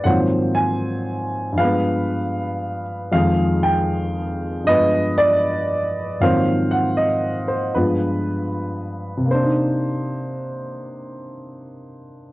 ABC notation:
X:1
M:4/4
L:1/8
Q:"Swing" 1/4=78
K:Cm
V:1 name="Grand piano"
_g a2 z f3 z | f g2 z e d2 z | f _g e c =B2 z2 | c8 |]
V:2 name="Grand piano" clef=bass
[A,,E,F,_G,B,Cc]4 [=G,,F,A,=B,=B]4 | [F,,E,F,A,A]4 [G,,F,A,=B,=B]4 | [A,,E,F,_G,B,Cc]4 [=G,,F,A,=B,F]4 | [C,B,DE]8 |]